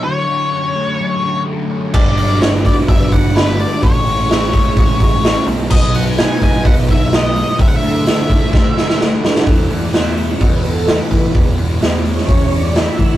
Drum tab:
CC |----------------|x---------------|----------------|x---------------|
HH |----------------|--o-o-o-o-o-o-o-|o-o-o-o-o-o-o-o-|--o-o-o-o-o-o-o-|
SD |----------------|----oo------o---|----oo------o---|----o-------o---|
BD |----------------|o-----o-o-o-----|o-----o-o-o-----|o-----o-o-o-----|

CC |----------------|----------------|----------------|
HH |o-o-o-o---------|o-o-o-o-o-o-o-o-|o-o-o-o-o-o-o-o-|
SD |----o---o-ooo-oo|----o-------o---|----o--o----o---|
BD |o-----o-o-------|o-------o-----o-|o-------o-----o-|